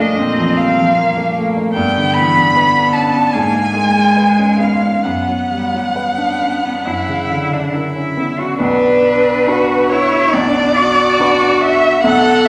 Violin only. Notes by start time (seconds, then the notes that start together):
0.00 D#5
0.57 F5
1.74 G5
2.14 B5
2.93 A5
3.33 G#5
4.59 F5
5.04 F#5
8.60 B4
9.90 C#5
10.33 D5
11.61 E5
12.03 F#5